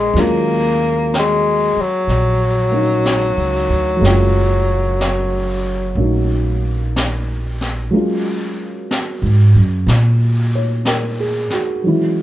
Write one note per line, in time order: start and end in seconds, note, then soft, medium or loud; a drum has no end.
0.00 0.10 A#1 medium
0.00 0.15 G#3 soft
0.00 0.21 G#3 medium
0.00 0.15 A#3 soft
0.00 0.16 B3 soft
0.00 0.16 D4 soft
0.00 0.16 F4 soft
0.14 1.72 D#2 medium
0.14 3.95 F#3 soft
0.14 3.98 G#3 soft
0.14 2.70 A#3 soft
0.14 brush sweep soft
0.14 snare soft
0.18 1.14 A#3 medium
0.18 2.72 C#4 soft
0.18 4.05 F4 soft
1.14 brush sweep soft
1.14 snare soft
1.14 hi-hat pedal soft
1.19 1.83 G#3 medium
1.77 muted upright bass stroke soft
1.81 6.98 F#3 medium
2.07 3.34 A#1 medium
2.07 brush sweep soft
2.07 snare soft
2.71 4.00 A#3 soft
2.71 4.03 C#4 soft
2.71 4.04 D#4 soft
2.71 4.04 F#4 soft
3.05 brush sweep soft
3.05 snare soft
3.05 hi-hat pedal soft
3.37 3.68 C#2 soft
3.69 4.00 D2 medium
3.96 7.89 F#3 soft
3.96 7.91 G#3 soft
4.01 5.93 F#1 medium
4.01 5.95 A#3 soft
4.01 brush sweep soft
4.01 snare soft
4.05 5.96 C#4 soft
4.05 7.93 F4 soft
5.01 brush sweep soft
5.01 snare soft
5.01 hi-hat pedal soft
5.95 7.88 A#1 medium
5.95 7.91 A#3 soft
5.95 7.93 C#4 soft
5.95 7.94 D#4 soft
6.00 7.94 F#4 soft
6.00 brush sweep soft
6.96 brush sweep soft
6.96 snare soft
6.96 hi-hat pedal soft
7.61 snare soft
7.91 11.81 F#3 soft
7.91 11.82 G#3 soft
7.91 11.82 A#3 soft
7.91 11.83 F4 soft
7.91 brush sweep soft
7.95 11.83 C#4 soft
8.91 brush sweep soft
8.91 snare soft
9.22 9.54 G#2 medium
9.55 9.86 F#2 medium
9.87 11.45 A#2 medium
9.87 brush sweep soft
9.87 snare soft
10.55 11.04 C#5 soft
10.85 11.47 A#4 soft
10.85 brush sweep soft
10.85 snare soft
11.20 11.69 G#4 soft
11.50 12.02 F#4 soft
11.50 snare soft
11.83 12.22 E3 soft
11.83 12.22 F#3 soft
11.83 12.22 G#3 soft
11.83 brush sweep soft
11.87 12.22 C#4 soft
11.87 12.22 E4 soft